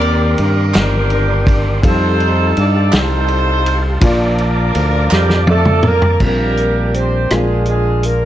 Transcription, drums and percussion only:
0.01 ride soft
0.38 ride soft
0.74 snare loud
0.74 clap loud
0.74 ride medium
1.10 ride soft
1.47 kick medium
1.47 ride medium
1.83 kick loud
1.83 ride medium
2.20 ride soft
2.57 ride soft
2.92 snare loud
2.92 clap medium
2.92 ride medium
3.28 ride soft
3.66 ride medium
4.01 kick loud
4.01 ride medium
4.38 ride soft
4.75 ride medium
5.11 snare medium
5.11 clap loud
5.30 snare medium
5.47 high tom medium
5.65 mid tom medium
5.83 mid tom medium
6.02 floor tom medium
6.20 kick loud
6.20 crash medium
6.57 closed hi-hat soft
6.94 closed hi-hat medium
7.30 cross-stick medium
7.30 closed hi-hat medium
7.65 closed hi-hat soft
8.03 closed hi-hat medium

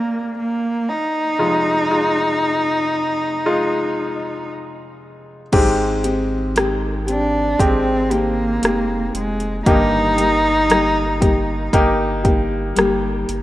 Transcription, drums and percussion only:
5.53 kick medium
5.53 closed hi-hat medium
5.53 crash medium
6.04 closed hi-hat medium
6.56 cross-stick medium
6.56 closed hi-hat medium
7.08 closed hi-hat medium
7.59 kick medium
7.59 closed hi-hat medium
8.11 closed hi-hat medium
8.63 cross-stick medium
8.63 closed hi-hat medium
9.15 closed hi-hat medium
9.40 closed hi-hat soft
9.66 kick medium
9.66 closed hi-hat medium
10.18 closed hi-hat medium
10.70 cross-stick medium
10.70 closed hi-hat medium
11.22 kick medium
11.22 closed hi-hat medium
11.73 kick medium
11.73 closed hi-hat medium
12.25 kick medium
12.25 closed hi-hat medium
12.76 cross-stick medium
12.76 closed hi-hat medium
13.29 closed hi-hat medium

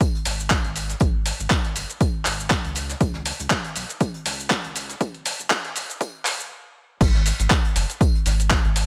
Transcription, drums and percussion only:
0.01 kick loud
0.01 closed hi-hat medium
0.01 tambourine medium
0.01 cabasa soft
0.15 closed hi-hat soft
0.25 snare soft
0.25 open hi-hat loud
0.25 tambourine medium
0.25 cabasa medium
0.40 cabasa soft
0.50 kick loud
0.50 snare loud
0.50 clap loud
0.50 closed hi-hat medium
0.50 tambourine medium
0.50 cabasa soft
0.65 closed hi-hat soft
0.76 open hi-hat medium
0.76 tambourine medium
0.76 cabasa medium
0.90 snare soft
0.90 closed hi-hat medium
0.90 cabasa soft
1.00 kick loud
1.00 closed hi-hat medium
1.00 tambourine medium
1.00 cabasa soft
1.26 open hi-hat loud
1.26 tambourine medium
1.26 cabasa medium
1.40 cabasa soft
1.50 kick loud
1.50 snare loud
1.50 clap loud
1.50 closed hi-hat medium
1.50 tambourine medium
1.50 cabasa soft
1.64 snare soft
1.64 closed hi-hat medium
1.75 open hi-hat medium
1.75 tambourine medium
1.75 cabasa medium
1.90 closed hi-hat soft
1.90 cabasa soft
2.01 kick loud
2.01 closed hi-hat medium
2.01 tambourine medium
2.01 cabasa soft
2.25 snare soft
2.25 clap medium
2.25 open hi-hat loud
2.25 tambourine medium
2.25 cabasa medium
2.40 cabasa soft
2.50 kick loud
2.50 snare loud
2.50 clap loud
2.50 closed hi-hat medium
2.50 tambourine medium
2.50 cabasa soft
2.65 closed hi-hat soft
2.75 open hi-hat loud
2.75 tambourine medium
2.75 cabasa medium
2.90 snare soft
2.90 closed hi-hat medium
2.90 cabasa soft
3.00 kick loud
3.00 closed hi-hat medium
3.00 tambourine medium
3.00 cabasa soft
3.14 snare soft
3.25 open hi-hat loud
3.25 tambourine medium
3.25 cabasa medium
3.39 closed hi-hat soft
3.39 cabasa soft
3.50 kick loud
3.50 snare loud
3.50 clap loud
3.50 closed hi-hat medium
3.50 tambourine medium
3.50 cabasa soft
3.64 closed hi-hat medium
3.64 closed hi-hat soft
3.75 open hi-hat medium
3.75 tambourine medium
3.75 cabasa medium
3.89 closed hi-hat soft
3.89 cabasa soft
4.01 kick loud
4.01 closed hi-hat medium
4.01 tambourine medium
4.01 cabasa soft
4.14 closed hi-hat soft
4.26 snare soft
4.26 open hi-hat loud
4.26 tambourine medium
4.26 cabasa medium
4.40 cabasa soft
4.50 kick loud
4.50 snare loud
4.50 clap loud
4.50 closed hi-hat medium
4.50 tambourine medium
4.50 cabasa soft
4.64 closed hi-hat soft
4.75 open hi-hat medium
4.75 tambourine medium
4.75 cabasa medium
4.89 snare soft
4.89 closed hi-hat soft
4.89 cabasa soft
5.01 kick loud
5.01 closed hi-hat medium
5.01 tambourine medium
5.01 cabasa soft
5.14 closed hi-hat soft
5.25 open hi-hat loud
5.25 tambourine medium
5.25 cabasa medium
5.39 closed hi-hat soft
5.39 cabasa soft
5.50 kick loud
5.50 snare loud
5.50 clap loud
5.50 closed hi-hat medium
5.50 tambourine medium
5.50 cabasa soft
5.65 snare soft
5.65 closed hi-hat medium
5.76 open hi-hat medium
5.76 tambourine medium
5.76 cabasa medium
5.90 closed hi-hat soft
5.90 cabasa soft
6.01 kick loud
6.01 closed hi-hat medium
6.01 tambourine medium
6.01 cabasa soft
6.25 snare soft
6.25 clap medium
6.25 open hi-hat loud
6.25 tambourine medium
6.25 cabasa medium
6.40 cabasa soft
7.01 kick loud
7.01 closed hi-hat medium
7.01 crash loud
7.01 tambourine medium
7.01 cabasa soft
7.15 snare soft
7.26 open hi-hat loud
7.26 tambourine medium
7.26 cabasa medium
7.40 closed hi-hat medium
7.40 closed hi-hat soft
7.40 cabasa soft
7.50 kick loud
7.50 snare loud
7.50 clap loud
7.50 closed hi-hat medium
7.50 tambourine medium
7.50 cabasa soft
7.65 closed hi-hat soft
7.76 open hi-hat loud
7.76 tambourine medium
7.76 cabasa medium
7.90 closed hi-hat medium
7.90 cabasa soft
8.01 kick loud
8.01 closed hi-hat medium
8.01 tambourine medium
8.01 cabasa soft
8.15 closed hi-hat soft
8.26 snare soft
8.26 open hi-hat loud
8.26 tambourine medium
8.26 cabasa medium
8.40 closed hi-hat medium
8.40 cabasa soft
8.50 kick loud
8.50 snare loud
8.50 clap loud
8.50 closed hi-hat medium
8.50 tambourine medium
8.50 cabasa soft
8.64 closed hi-hat soft
8.76 open hi-hat loud
8.76 tambourine medium
8.76 cabasa medium

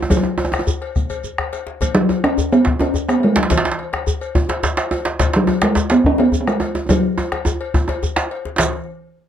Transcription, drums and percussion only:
0.02 djembe tone loud
0.10 bombo low loud
0.10 cowbell medium
0.10 djembe tone medium
0.10 djembe bass medium
0.10 shekere medium
0.17 djembe tone medium
0.23 bombo rim soft
0.23 djembe tone medium
0.38 cowbell soft
0.38 djembe tone loud
0.45 djembe tone medium
0.52 bombo rim medium
0.52 cowbell medium
0.52 djembe slap medium
0.52 djembe tone medium
0.52 shekere soft
0.59 djembe tone medium
0.67 djembe bass medium
0.67 shekere medium
0.82 bombo rim soft
0.82 cowbell medium
0.96 bombo rim soft
0.96 bombo low loud
0.96 shekere soft
1.10 cowbell medium
1.10 djembe bass medium
1.10 shekere soft
1.24 djembe bass medium
1.24 shekere soft
1.38 bombo rim medium
1.38 cowbell soft
1.38 djembe bass medium
1.53 cowbell medium
1.53 djembe slap medium
1.53 shekere soft
1.67 djembe slap medium
1.81 bombo low loud
1.81 cowbell medium
1.81 djembe slap soft
1.81 djembe bass medium
1.81 shekere medium
1.95 djembe slap medium
1.95 djembe slap soft
2.09 cowbell soft
2.09 djembe tone medium
2.24 bombo rim medium
2.24 cowbell medium
2.24 djembe slap medium
2.24 djembe tone medium
2.38 djembe bass medium
2.38 shekere medium
2.53 cowbell medium
2.53 shekere soft
2.65 bombo low loud
2.65 djembe slap medium
2.79 cowbell soft
2.79 djembe slap medium
2.79 djembe tone medium
2.94 bombo rim soft
2.94 djembe bass medium
2.94 shekere soft
3.09 bombo rim medium
3.09 cowbell medium
3.09 shekere soft
3.23 bombo rim soft
3.23 cowbell medium
3.36 djembe slap loud
3.36 djembe slap medium
3.36 djembe tone medium
3.43 djembe slap medium
3.50 bombo low loud
3.50 cowbell medium
3.50 djembe slap medium
3.50 djembe slap soft
3.50 djembe bass medium
3.50 shekere medium
3.57 djembe slap loud
3.65 djembe slap soft
3.65 djembe slap medium
3.72 djembe slap medium
3.79 cowbell soft
3.93 bombo rim medium
3.93 cowbell medium
3.93 djembe slap medium
3.93 djembe tone medium
4.07 djembe bass medium
4.07 shekere medium
4.21 cowbell soft
4.21 djembe slap soft
4.21 shekere soft
4.35 bombo low loud
4.35 djembe tone loud
4.49 cowbell medium
4.49 djembe slap medium
4.49 djembe tone medium
4.63 bombo rim soft
4.63 djembe slap medium
4.63 djembe bass medium
4.63 shekere medium
4.77 bombo rim medium
4.77 cowbell medium
4.77 djembe slap medium
4.77 shekere soft
4.91 bombo rim soft
4.91 cowbell medium
4.91 djembe tone loud
5.05 djembe slap medium
5.05 djembe tone medium
5.19 bombo low loud
5.19 cowbell medium
5.19 djembe slap medium
5.19 djembe slap soft
5.19 djembe bass medium
5.19 shekere medium
5.33 djembe slap medium
5.47 cowbell medium
5.47 djembe tone loud
5.62 bombo rim medium
5.62 cowbell soft
5.62 djembe slap medium
5.62 djembe tone medium
5.75 djembe slap medium
5.75 djembe bass medium
5.75 shekere medium
5.90 cowbell medium
5.90 djembe slap medium
5.90 djembe slap soft
5.90 shekere soft
6.04 bombo low loud
6.18 cowbell medium
6.18 djembe slap medium
6.18 djembe tone medium
6.32 djembe bass medium
6.32 shekere medium
6.47 bombo rim medium
6.47 cowbell soft
6.47 shekere soft
6.60 bombo rim soft
6.60 cowbell medium
6.60 djembe tone medium
6.75 djembe slap medium
6.75 djembe tone medium
6.89 bombo low loud
6.89 cowbell medium
6.89 djembe slap soft
6.89 djembe tone loud
6.89 djembe bass medium
6.89 shekere medium
7.04 djembe slap soft
7.18 cowbell medium
7.18 djembe tone loud
7.18 shekere soft
7.32 bombo rim medium
7.32 cowbell medium
7.32 djembe slap medium
7.32 djembe tone medium
7.45 bombo rim soft
7.45 djembe tone loud
7.45 djembe bass medium
7.45 shekere medium
7.61 cowbell medium
7.61 djembe slap soft
7.74 bombo low loud
7.74 djembe tone loud
7.74 shekere soft
7.88 cowbell medium
7.88 djembe slap medium
7.88 djembe tone medium
8.03 bombo rim soft
8.03 djembe bass medium
8.03 shekere medium
8.16 bombo rim medium
8.16 cowbell soft
8.16 djembe slap loud
8.16 shekere soft
8.31 cowbell medium
8.45 djembe slap medium
8.45 djembe tone medium
8.58 bombo low medium
8.58 cowbell medium
8.58 djembe slap loud
8.58 djembe bass medium
8.58 shekere loud

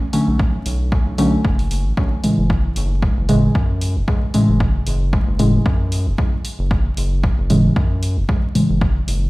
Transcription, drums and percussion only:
0.13 open hi-hat medium
0.39 kick loud
0.66 open hi-hat medium
0.92 kick loud
1.18 open hi-hat medium
1.45 kick loud
1.59 open hi-hat soft
1.71 open hi-hat medium
1.97 kick loud
2.24 open hi-hat medium
2.50 kick loud
2.76 open hi-hat medium
3.02 kick loud
3.29 open hi-hat medium
3.55 kick loud
3.81 open hi-hat medium
4.08 kick loud
4.34 open hi-hat medium
4.60 kick loud
4.87 open hi-hat medium
5.13 kick loud
5.39 open hi-hat medium
5.66 kick loud
5.92 open hi-hat medium
6.18 kick loud
6.45 open hi-hat medium
6.71 kick loud
6.97 open hi-hat medium
7.24 kick loud
7.50 open hi-hat medium
7.76 kick loud
8.03 open hi-hat medium
8.29 kick loud
8.55 open hi-hat medium
8.81 kick loud
9.08 open hi-hat medium

